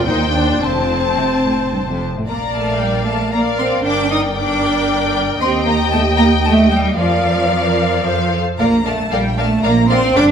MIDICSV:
0, 0, Header, 1, 6, 480
1, 0, Start_track
1, 0, Key_signature, -2, "major"
1, 0, Tempo, 543971
1, 556, Time_signature, 3, 2, 24, 8
1, 2476, Tempo, 521739
1, 5836, Tempo, 529568
1, 9332, End_track
2, 0, Start_track
2, 0, Title_t, "Violin section"
2, 0, Program_c, 0, 48
2, 76, Note_on_c, 0, 72, 43
2, 77, Note_off_c, 0, 72, 0
2, 77, Note_on_c, 0, 72, 44
2, 553, Note_off_c, 0, 72, 0
2, 563, Note_on_c, 0, 72, 38
2, 564, Note_off_c, 0, 72, 0
2, 564, Note_on_c, 0, 72, 43
2, 1805, Note_off_c, 0, 72, 0
2, 2010, Note_on_c, 0, 82, 41
2, 2227, Note_off_c, 0, 82, 0
2, 2243, Note_on_c, 0, 81, 39
2, 2468, Note_on_c, 0, 79, 42
2, 2475, Note_off_c, 0, 81, 0
2, 2712, Note_on_c, 0, 81, 41
2, 2713, Note_off_c, 0, 79, 0
2, 2946, Note_on_c, 0, 82, 41
2, 2950, Note_off_c, 0, 81, 0
2, 3019, Note_off_c, 0, 82, 0
2, 3194, Note_on_c, 0, 84, 49
2, 3267, Note_off_c, 0, 84, 0
2, 3440, Note_on_c, 0, 86, 51
2, 3677, Note_off_c, 0, 86, 0
2, 3682, Note_on_c, 0, 87, 47
2, 3756, Note_off_c, 0, 87, 0
2, 3922, Note_on_c, 0, 86, 47
2, 4624, Note_off_c, 0, 86, 0
2, 4869, Note_on_c, 0, 84, 59
2, 4942, Note_off_c, 0, 84, 0
2, 5100, Note_on_c, 0, 82, 61
2, 5329, Note_on_c, 0, 81, 59
2, 5341, Note_off_c, 0, 82, 0
2, 5403, Note_off_c, 0, 81, 0
2, 5576, Note_on_c, 0, 82, 64
2, 5649, Note_off_c, 0, 82, 0
2, 5818, Note_on_c, 0, 81, 52
2, 5891, Note_off_c, 0, 81, 0
2, 6061, Note_on_c, 0, 79, 52
2, 6133, Note_off_c, 0, 79, 0
2, 6306, Note_on_c, 0, 77, 51
2, 7503, Note_off_c, 0, 77, 0
2, 7766, Note_on_c, 0, 82, 46
2, 7992, Note_off_c, 0, 82, 0
2, 8004, Note_on_c, 0, 81, 48
2, 8248, Note_off_c, 0, 81, 0
2, 8251, Note_on_c, 0, 79, 49
2, 8489, Note_off_c, 0, 79, 0
2, 8489, Note_on_c, 0, 81, 49
2, 8722, Note_on_c, 0, 82, 52
2, 8725, Note_off_c, 0, 81, 0
2, 8954, Note_off_c, 0, 82, 0
2, 8955, Note_on_c, 0, 84, 54
2, 9188, Note_on_c, 0, 86, 66
2, 9189, Note_off_c, 0, 84, 0
2, 9261, Note_off_c, 0, 86, 0
2, 9332, End_track
3, 0, Start_track
3, 0, Title_t, "Violin section"
3, 0, Program_c, 1, 48
3, 64, Note_on_c, 1, 79, 49
3, 540, Note_off_c, 1, 79, 0
3, 554, Note_on_c, 1, 81, 43
3, 1825, Note_off_c, 1, 81, 0
3, 2009, Note_on_c, 1, 77, 32
3, 2921, Note_off_c, 1, 77, 0
3, 2967, Note_on_c, 1, 77, 41
3, 3435, Note_off_c, 1, 77, 0
3, 3436, Note_on_c, 1, 79, 35
3, 3911, Note_off_c, 1, 79, 0
3, 3922, Note_on_c, 1, 79, 46
3, 4859, Note_off_c, 1, 79, 0
3, 4875, Note_on_c, 1, 79, 48
3, 6281, Note_off_c, 1, 79, 0
3, 6321, Note_on_c, 1, 77, 45
3, 7273, Note_off_c, 1, 77, 0
3, 7291, Note_on_c, 1, 77, 43
3, 7585, Note_off_c, 1, 77, 0
3, 7776, Note_on_c, 1, 77, 37
3, 7849, Note_off_c, 1, 77, 0
3, 8010, Note_on_c, 1, 77, 33
3, 8083, Note_off_c, 1, 77, 0
3, 8244, Note_on_c, 1, 77, 40
3, 8317, Note_off_c, 1, 77, 0
3, 8486, Note_on_c, 1, 77, 36
3, 8558, Note_off_c, 1, 77, 0
3, 8718, Note_on_c, 1, 77, 44
3, 8791, Note_off_c, 1, 77, 0
3, 8954, Note_on_c, 1, 77, 45
3, 9026, Note_off_c, 1, 77, 0
3, 9193, Note_on_c, 1, 79, 47
3, 9265, Note_off_c, 1, 79, 0
3, 9332, End_track
4, 0, Start_track
4, 0, Title_t, "Viola section"
4, 0, Program_c, 2, 48
4, 65, Note_on_c, 2, 63, 49
4, 304, Note_off_c, 2, 63, 0
4, 305, Note_on_c, 2, 62, 47
4, 546, Note_off_c, 2, 62, 0
4, 546, Note_on_c, 2, 60, 49
4, 1763, Note_off_c, 2, 60, 0
4, 2006, Note_on_c, 2, 74, 39
4, 2007, Note_on_c, 2, 70, 36
4, 2920, Note_off_c, 2, 70, 0
4, 2920, Note_off_c, 2, 74, 0
4, 2956, Note_on_c, 2, 70, 39
4, 2958, Note_on_c, 2, 74, 41
4, 3426, Note_off_c, 2, 74, 0
4, 3429, Note_off_c, 2, 70, 0
4, 3437, Note_on_c, 2, 74, 38
4, 3439, Note_on_c, 2, 70, 39
4, 3911, Note_off_c, 2, 74, 0
4, 3912, Note_off_c, 2, 70, 0
4, 3924, Note_on_c, 2, 70, 46
4, 3926, Note_on_c, 2, 74, 48
4, 4860, Note_off_c, 2, 70, 0
4, 4861, Note_off_c, 2, 74, 0
4, 4878, Note_on_c, 2, 75, 45
4, 4880, Note_on_c, 2, 67, 50
4, 6282, Note_off_c, 2, 75, 0
4, 6284, Note_off_c, 2, 67, 0
4, 6320, Note_on_c, 2, 70, 42
4, 6325, Note_on_c, 2, 74, 47
4, 7272, Note_off_c, 2, 70, 0
4, 7275, Note_off_c, 2, 74, 0
4, 7293, Note_on_c, 2, 69, 42
4, 7298, Note_on_c, 2, 72, 40
4, 7592, Note_off_c, 2, 69, 0
4, 7595, Note_off_c, 2, 72, 0
4, 7774, Note_on_c, 2, 74, 39
4, 7775, Note_on_c, 2, 70, 38
4, 7847, Note_off_c, 2, 70, 0
4, 7847, Note_off_c, 2, 74, 0
4, 8010, Note_on_c, 2, 70, 35
4, 8012, Note_on_c, 2, 74, 37
4, 8083, Note_off_c, 2, 70, 0
4, 8084, Note_off_c, 2, 74, 0
4, 8254, Note_on_c, 2, 70, 41
4, 8255, Note_on_c, 2, 74, 41
4, 8327, Note_off_c, 2, 70, 0
4, 8328, Note_off_c, 2, 74, 0
4, 8484, Note_on_c, 2, 74, 43
4, 8485, Note_on_c, 2, 70, 43
4, 8557, Note_off_c, 2, 74, 0
4, 8558, Note_off_c, 2, 70, 0
4, 8724, Note_on_c, 2, 70, 41
4, 8724, Note_on_c, 2, 74, 40
4, 8797, Note_off_c, 2, 70, 0
4, 8797, Note_off_c, 2, 74, 0
4, 8958, Note_on_c, 2, 74, 40
4, 8962, Note_on_c, 2, 70, 37
4, 9030, Note_off_c, 2, 74, 0
4, 9035, Note_off_c, 2, 70, 0
4, 9194, Note_on_c, 2, 70, 47
4, 9194, Note_on_c, 2, 74, 44
4, 9266, Note_off_c, 2, 70, 0
4, 9267, Note_off_c, 2, 74, 0
4, 9332, End_track
5, 0, Start_track
5, 0, Title_t, "Cello section"
5, 0, Program_c, 3, 48
5, 77, Note_on_c, 3, 39, 53
5, 556, Note_on_c, 3, 41, 45
5, 557, Note_off_c, 3, 39, 0
5, 983, Note_off_c, 3, 41, 0
5, 1040, Note_on_c, 3, 48, 44
5, 1110, Note_off_c, 3, 48, 0
5, 1282, Note_on_c, 3, 45, 43
5, 1353, Note_off_c, 3, 45, 0
5, 1525, Note_on_c, 3, 43, 50
5, 1573, Note_off_c, 3, 43, 0
5, 1648, Note_on_c, 3, 41, 44
5, 1884, Note_off_c, 3, 41, 0
5, 1901, Note_on_c, 3, 45, 40
5, 1946, Note_off_c, 3, 45, 0
5, 2012, Note_on_c, 3, 58, 51
5, 2082, Note_off_c, 3, 58, 0
5, 2246, Note_on_c, 3, 57, 50
5, 2473, Note_off_c, 3, 57, 0
5, 2479, Note_on_c, 3, 55, 47
5, 2716, Note_on_c, 3, 57, 49
5, 2719, Note_off_c, 3, 55, 0
5, 2955, Note_on_c, 3, 58, 53
5, 2957, Note_off_c, 3, 57, 0
5, 3028, Note_off_c, 3, 58, 0
5, 3202, Note_on_c, 3, 60, 53
5, 3437, Note_off_c, 3, 60, 0
5, 3441, Note_on_c, 3, 62, 61
5, 3677, Note_off_c, 3, 62, 0
5, 3682, Note_on_c, 3, 63, 57
5, 3756, Note_off_c, 3, 63, 0
5, 3916, Note_on_c, 3, 62, 56
5, 4621, Note_off_c, 3, 62, 0
5, 4875, Note_on_c, 3, 60, 71
5, 5098, Note_off_c, 3, 60, 0
5, 5109, Note_on_c, 3, 58, 60
5, 5183, Note_off_c, 3, 58, 0
5, 5348, Note_on_c, 3, 57, 70
5, 5422, Note_off_c, 3, 57, 0
5, 5590, Note_on_c, 3, 58, 71
5, 5664, Note_off_c, 3, 58, 0
5, 5832, Note_on_c, 3, 57, 68
5, 6069, Note_off_c, 3, 57, 0
5, 6073, Note_on_c, 3, 55, 63
5, 6313, Note_off_c, 3, 55, 0
5, 6319, Note_on_c, 3, 53, 58
5, 7509, Note_off_c, 3, 53, 0
5, 7777, Note_on_c, 3, 58, 59
5, 7998, Note_off_c, 3, 58, 0
5, 8014, Note_on_c, 3, 57, 53
5, 8247, Note_off_c, 3, 57, 0
5, 8250, Note_on_c, 3, 55, 50
5, 8483, Note_off_c, 3, 55, 0
5, 8493, Note_on_c, 3, 57, 59
5, 8722, Note_off_c, 3, 57, 0
5, 8732, Note_on_c, 3, 58, 64
5, 8964, Note_off_c, 3, 58, 0
5, 8964, Note_on_c, 3, 60, 74
5, 9193, Note_off_c, 3, 60, 0
5, 9199, Note_on_c, 3, 62, 76
5, 9332, Note_off_c, 3, 62, 0
5, 9332, End_track
6, 0, Start_track
6, 0, Title_t, "Double bass section"
6, 0, Program_c, 4, 48
6, 78, Note_on_c, 4, 39, 55
6, 557, Note_off_c, 4, 39, 0
6, 558, Note_on_c, 4, 29, 48
6, 1801, Note_off_c, 4, 29, 0
6, 2010, Note_on_c, 4, 34, 39
6, 3404, Note_off_c, 4, 34, 0
6, 3433, Note_on_c, 4, 31, 46
6, 4846, Note_off_c, 4, 31, 0
6, 4875, Note_on_c, 4, 39, 55
6, 6281, Note_off_c, 4, 39, 0
6, 6313, Note_on_c, 4, 41, 48
6, 7269, Note_off_c, 4, 41, 0
6, 7288, Note_on_c, 4, 41, 45
6, 7584, Note_off_c, 4, 41, 0
6, 7769, Note_on_c, 4, 34, 44
6, 8193, Note_off_c, 4, 34, 0
6, 8246, Note_on_c, 4, 34, 46
6, 8667, Note_off_c, 4, 34, 0
6, 8723, Note_on_c, 4, 34, 56
6, 9139, Note_off_c, 4, 34, 0
6, 9202, Note_on_c, 4, 31, 61
6, 9332, Note_off_c, 4, 31, 0
6, 9332, End_track
0, 0, End_of_file